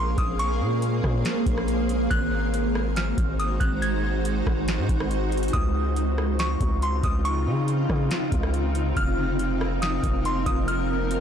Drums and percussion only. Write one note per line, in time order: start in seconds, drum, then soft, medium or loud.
0.18 kick loud
0.18 closed hi-hat medium
0.39 closed hi-hat medium
0.82 closed hi-hat medium
1.04 kick medium
1.04 cross-stick medium
1.25 snare loud
1.25 closed hi-hat medium
1.46 kick loud
1.46 closed hi-hat medium
1.58 cross-stick medium
1.68 closed hi-hat medium
1.89 closed hi-hat medium
2.11 kick loud
2.11 closed hi-hat medium
2.54 closed hi-hat medium
2.75 cross-stick medium
2.96 snare loud
2.96 closed hi-hat medium
3.18 kick medium
3.18 closed hi-hat medium
3.40 closed hi-hat medium
3.61 kick loud
3.61 closed hi-hat medium
3.82 closed hi-hat medium
4.25 closed hi-hat medium
4.47 kick medium
4.47 cross-stick loud
4.68 snare loud
4.68 closed hi-hat medium
4.89 kick medium
4.89 closed hi-hat medium
5.00 cross-stick loud
5.11 closed hi-hat medium
5.32 closed hi-hat soft
5.38 closed hi-hat medium
5.43 closed hi-hat medium
5.48 closed hi-hat medium
5.54 kick loud
5.54 closed hi-hat medium
5.96 closed hi-hat medium
6.18 cross-stick medium
6.39 snare loud
6.39 closed hi-hat medium
6.61 kick medium
6.61 closed hi-hat medium
6.82 closed hi-hat medium
7.03 kick loud
7.03 closed hi-hat medium
7.25 closed hi-hat medium
7.68 closed hi-hat medium
7.89 kick medium
7.89 cross-stick medium
8.11 snare loud
8.11 closed hi-hat medium
8.32 kick medium
8.32 closed hi-hat medium
8.43 cross-stick medium
8.54 closed hi-hat medium
8.75 closed hi-hat medium
8.97 kick loud
8.97 closed hi-hat medium
9.39 closed hi-hat medium
9.61 cross-stick loud
9.82 snare loud
9.82 closed hi-hat medium
10.03 kick medium
10.03 closed hi-hat medium
10.25 closed hi-hat medium
10.46 kick loud
10.46 closed hi-hat medium
10.68 closed hi-hat medium
11.11 closed hi-hat medium